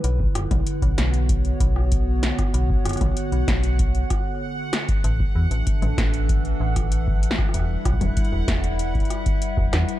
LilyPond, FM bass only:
\new Staff \with { instrumentName = "FM bass" } { \clef bass \time 4/4 \key b \minor \tempo 4 = 96 b,,16 r16 fis,,16 b,,16 r16 b,,16 b,,4 b,,4~ b,,16 r16 | b,,16 r16 fis,,16 b,,16 r16 b,,16 b,,4 r4. | a,,16 r16 e,16 a,,16 r16 a,,16 a,,4 a,,4~ a,,16 r16 | e,,16 r16 b,,16 e,,16 r16 e,,16 e,,4 r8. e,,16 e,16 r16 | }